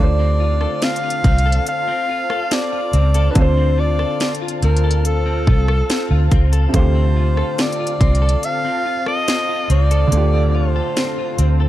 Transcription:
Already playing: fingered electric bass D2, clean electric guitar D3, felt piano A3 D4, ambient pad F4 C5 F5 A5
0.00 felt piano F4 C5, alto saxophone D5
0.19 clean electric guitar C4
0.40 clean electric guitar F4
0.61 clean electric guitar A4, cross-stick
0.82 clean electric guitar C4, alto saxophone F5, snare, closed hi-hat
0.96 closed hi-hat
1.03 clean electric guitar F4
1.10 closed hi-hat
1.24 fingered electric bass C2, clean electric guitar C4, kick, closed hi-hat
1.38 closed hi-hat
1.46 clean electric guitar A4
1.52 closed hi-hat
1.67 alto saxophone F5, closed hi-hat
1.88 clean electric guitar C4
2.09 clean electric guitar F4
2.30 clean electric guitar A4, cross-stick
2.51 clean electric guitar C4, alto saxophone D5, snare, closed hi-hat
2.72 clean electric guitar F4
2.93 fingered electric bass C#2, clean electric guitar C4, closed hi-hat
3.14 clean electric guitar A4, closed hi-hat
3.31 felt piano C4 D4, alto saxophone B4
3.35 fingered electric bass D2, clean electric guitar D3, felt piano F4, alto saxophone C5, kick, closed hi-hat
3.41 felt piano C5
3.57 clean electric guitar C4
3.78 clean electric guitar F4, alto saxophone D5
3.99 clean electric guitar A4, cross-stick
4.20 clean electric guitar C4, snare, closed hi-hat
4.35 closed hi-hat
4.42 clean electric guitar F4
4.48 closed hi-hat
4.62 fingered electric bass D2, clean electric guitar C4, alto saxophone A#4, closed hi-hat
4.77 closed hi-hat
4.84 clean electric guitar A4
4.91 closed hi-hat
5.05 alto saxophone A4, closed hi-hat
5.26 clean electric guitar C4
5.47 fingered electric bass C2, clean electric guitar F4, kick
5.68 clean electric guitar A4, cross-stick
5.89 clean electric guitar C4, snare, closed hi-hat
6.11 fingered electric bass D2, clean electric guitar F4
6.31 fingered electric bass C#2, clean electric guitar C4, kick, closed hi-hat
6.53 clean electric guitar A4, closed hi-hat
6.69 felt piano C3 A3
6.73 fingered electric bass D2, clean electric guitar D3, felt piano F4, alto saxophone C5, kick, closed hi-hat
6.79 felt piano G4
6.95 clean electric guitar C4
7.16 clean electric guitar F4
7.37 clean electric guitar A4, cross-stick
7.58 clean electric guitar C4, alto saxophone D5, snare, closed hi-hat
7.72 closed hi-hat
7.79 clean electric guitar F4
7.87 closed hi-hat
8.01 fingered electric bass C2, clean electric guitar C4, kick, closed hi-hat
8.15 closed hi-hat
8.22 clean electric guitar A4
8.29 closed hi-hat
8.43 alto saxophone F5, closed hi-hat
8.64 clean electric guitar C4
8.86 clean electric guitar F4
9.06 clean electric guitar A4, alto saxophone D#5, cross-stick
9.28 clean electric guitar C4, snare, closed hi-hat
9.49 clean electric guitar F4
9.70 fingered electric bass C#2, clean electric guitar C4, alto saxophone D5, closed hi-hat
9.91 clean electric guitar A4, closed hi-hat
10.07 felt piano D3 A3
10.12 fingered electric bass D2, clean electric guitar D3, felt piano F4, closed hi-hat
10.17 felt piano G4
10.34 clean electric guitar C4
10.55 clean electric guitar F4, alto saxophone C5
10.76 clean electric guitar A4
10.97 clean electric guitar C4, snare, closed hi-hat
11.18 clean electric guitar F4
11.38 fingered electric bass D2, clean electric guitar C4, closed hi-hat
11.60 clean electric guitar A4

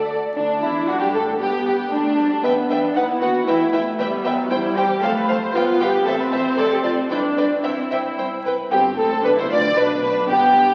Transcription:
Already playing: cello section D2, double bass section D2, violin section A4 D5
0.10 viola section D5
0.36 double bass section D2, violin section D4, cello section D4, viola section D4
0.61 double bass section E2, violin section E4, cello section E4
0.87 double bass section F#2, violin section F#4, cello section F#4
1.00 double bass section G2, violin section G4, cello section G4
1.13 double bass section A2, cello section A4, violin section A4
1.39 double bass section G2, viola section B3, violin section G4, cello section G4
1.66 double bass section G2, cello section G4, violin section G4
1.91 double bass section D2, viola section A3, cello section D4, violin section D4
2.18 viola section G3
2.43 double bass section E2, cello section B3, viola section B3, violin section B4 E5 G5
2.69 double bass section E2, cello section D4, violin section B4 E5 G5
2.95 double bass section D#2, cello section D#4, violin section B4 F#5
3.09 cello section E4
3.21 double bass section D#2, cello section F#4, violin section B4 F#5
3.47 double bass section E2, viola section A3, cello section E4, violin section B4 E5 G5
3.73 double bass section E2, cello section E4, violin section B4 E5 G5
3.99 double bass section E2, viola section G3, cello section B3, violin section B4 E5 G5
4.25 double bass section E2, viola section F#3, violin section B4 E5 G5
4.50 double bass section E2, viola section G3, cello section E4, violin section C5 G5
4.76 double bass section E2, cello section G4, violin section C5 G5
5.02 double bass section F2, viola section A3, cello section A4, violin section C5 F5 A5
5.16 cello section B4
5.28 double bass section F2, violin section C5 F5 A5, cello section C5
5.54 double bass section G1, viola section B3, cello section F4, violin section B4 F5 G5
5.80 double bass section G1, cello section G4, violin section B4 F5 G5
6.05 double bass section A1, viola section C4, cello section A4, violin section C5 E5 A5
6.19 cello section B4
6.31 double bass section A1, cello section C5, violin section C5 E5 A5
6.57 double bass section F1, cello section A4, violin section D5 A5
6.71 cello section G4
6.84 double bass section F1, cello section F4, violin section D5 A5
7.10 double bass section G1, viola section D4, cello section E4, violin section B4 D5 G5
7.37 double bass section G1, cello section D4, violin section B4 D5 G5
7.63 double bass section C2, cello section C4, viola section E4, violin section C5 E5 G5
7.90 double bass section C2, violin section C5 E5 G5
8.18 double bass section C2, violin section C5 G5
8.45 double bass section C2, violin section B4 G5
8.71 double bass section G1, cello section G2, viola section C4, violin section G4
8.97 double bass section A1, cello section A2, viola section C4, violin section A4
9.24 double bass section B1, cello section B2, viola section D4, violin section B4
9.36 cello section C3, viola section E4, violin section C5
9.49 double bass section D2, cello section D3, viola section F4, violin section D5
9.75 double bass section B1, cello section B2, viola section D4, violin section B4
10.01 double bass section B1, cello section B2, viola section D4, violin section B4
10.28 double bass section G1, cello section G2, viola section B3, violin section G4

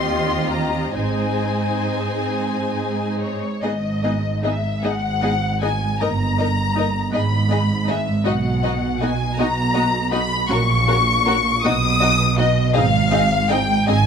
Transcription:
Already playing: double bass section D#2, cello section D#2, viola section C4 F4, violin section G4 D#5 C6
0.50 violin section A#5
0.95 double bass section G#1, cello section G#2, viola section C4 D#4, violin section G#4 C5 G#5
3.21 violin section C#5
3.62 double bass section G#1, cello section G#2, viola section B3 D#4, violin section G#4 D#5
4.03 viola section B3 D#4, violin section G#4 D#5
4.43 viola section B3 D#4, violin section G#4 D#5 E5
4.83 double bass section G#1, cello section G#2, viola section B3 D#4, violin section G#4 D#5 F#5
5.22 viola section B3 D#4, violin section G#4 D#5
5.61 viola section B3 D#4, violin section G#4 D#5 G#5
6.00 double bass section G1, cello section G2, viola section A#3 D#4, violin section A#4 D#5 A#5
6.37 viola section A#3 D#4, violin section A#4 D#5
6.74 viola section A#3 D#4, violin section A#4 D#5
7.11 double bass section G#1, cello section G#2, viola section B3 D#4, violin section G#4 D#5 B5
7.49 viola section B3 D#4, violin section G#4 D#5
7.87 viola section B3 D#4, violin section G#4 D#5 E5
8.24 double bass section B1, cello section B2, viola section B3 D#4, violin section F#4 D#5 F#5
8.63 viola section B3 D#4, violin section F#4 D#5
9.01 viola section B3 D#4, violin section F#4 D#5 G#5
9.38 double bass section B1, cello section B2, viola section B3 D#4, violin section F#4 D#5 A#5
9.74 viola section B3 D#4, violin section F#4 D#5
10.11 viola section B3 D#4, violin section F#4 D#5 B5
10.49 double bass section A#1, cello section A#2, viola section C#4 F#4, violin section F#4 A#4 C#6
10.87 viola section C#4 F#4, violin section F#4 A#4
11.25 viola section C#4 F#4, violin section F#4 A#4
11.63 double bass section B1, cello section B2, viola section B3 D#4, violin section F#4 D#5 D#6
12.01 viola section B3 D#4, violin section F#4 D#5
12.37 viola section B3 D#4, violin section F#4 D#5
12.73 double bass section G#1, cello section G#2, viola section C4 D#4, violin section G#4 D#5 F5
13.11 viola section C4 D#4, violin section G#4 D#5
13.49 viola section C4 D#4, violin section G#4 D#5 G5
13.87 double bass section G#1, cello section G#2, viola section C4 D#4, violin section G#4 D#5 G#5

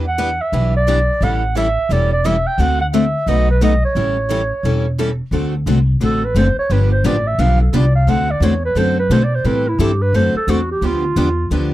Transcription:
Already playing: upright bass E2
0.07 clarinet F#5
0.18 steel-string acoustic guitar E3 G3 B3 D4 E4 G4 B4
0.41 clarinet E5
0.52 upright bass B1, steel-string acoustic guitar E3 G3 B3 D4 E4 G4 B4
0.76 clarinet D5
0.87 steel-string acoustic guitar E3 G3 B3 D4 E4 G4 B4
1.21 upright bass A1, steel-string acoustic guitar E3 G3 C#4 E4 A4, clarinet F#5
1.55 steel-string acoustic guitar E3 G3 C#4 E4 A4, clarinet E5
1.89 upright bass E1, steel-string acoustic guitar E3 G3 C#4 E4 A4, clarinet D5
2.13 clarinet D5
2.24 steel-string acoustic guitar E3 G3 C#4 E4 A4, clarinet E5
2.47 clarinet G5
2.58 upright bass D2, steel-string acoustic guitar D3 A3 C4 F#4 A4, clarinet F#5
2.81 clarinet F#5
2.93 steel-string acoustic guitar D3 A3 C4 F#4 A4, clarinet E5
3.26 upright bass B1, steel-string acoustic guitar B2 F#3 A3 D#4 F#4 B4, clarinet D#5
3.50 clarinet B4
3.61 steel-string acoustic guitar B2 F#3 A3 D#4 F#4 B4, clarinet D#5
3.85 clarinet C#5
3.95 upright bass A1, steel-string acoustic guitar E3 G3 C#4 E4 A4
4.29 steel-string acoustic guitar E3 G3 C#4 E4 A4
4.63 upright bass E1, steel-string acoustic guitar E3 G3 C#4 E4 A4
4.98 steel-string acoustic guitar E3 G3 C#4 E4 A4
5.31 upright bass D2, steel-string acoustic guitar D3 A3 C4 F#4 A4
5.66 upright bass C2, steel-string acoustic guitar D3 A3 C4 F#4 A4
6.00 upright bass A1, steel-string acoustic guitar D3 A3 C4 F#4 A4, clarinet A4
6.24 clarinet B4
6.34 upright bass F#1, steel-string acoustic guitar D3 A3 C4 F#4 A4, clarinet C5
6.56 clarinet C#5, muted upright bass stroke
6.70 upright bass G1, steel-string acoustic guitar D3 F3 B3 D4 G4, clarinet B4
6.92 clarinet C5
7.04 upright bass A1, steel-string acoustic guitar D3 F3 B3 D4 G4, clarinet D5
7.27 clarinet E5
7.38 upright bass B1, steel-string acoustic guitar D3 F3 B3 D4 G4, clarinet F5
7.62 clarinet A4
7.73 upright bass C2, steel-string acoustic guitar D3 F3 B3 D4 G4, clarinet D5
7.95 clarinet F5
8.07 upright bass D2, steel-string acoustic guitar D3 A3 C4 F#4 A4, clarinet F#5
8.31 clarinet D5
8.40 upright bass E2, steel-string acoustic guitar D3 A3 C4 F#4 A4, clarinet C#5
8.65 clarinet B4
8.75 upright bass F#2, steel-string acoustic guitar D3 A3 C4 F#4 A4, clarinet C5
8.99 clarinet B4
9.09 upright bass B2, steel-string acoustic guitar D3 A3 C4 F#4 A4, clarinet C5
9.24 clarinet D5
9.35 clarinet C5
9.44 upright bass A2, steel-string acoustic guitar E3 G3 C4 E4 A4, clarinet B4
9.68 clarinet E4
9.79 upright bass G2, steel-string acoustic guitar E3 G3 C4 E4 A4, clarinet G4
10.02 clarinet B4
10.13 upright bass F#2, steel-string acoustic guitar D3 A3 C4 F#4 A4, clarinet C5
10.34 clarinet A4, muted upright bass stroke
10.47 upright bass E2, steel-string acoustic guitar D3 A3 C4 F#4 A4, clarinet F#4
10.72 clarinet G4
10.81 upright bass D2, steel-string acoustic guitar D3 F3 B3 D4 G4
10.85 clarinet F4
11.16 upright bass E2, steel-string acoustic guitar D3 F3 B3 D4 G4
11.50 upright bass D2, steel-string acoustic guitar D3 F3 B3 D4 G4

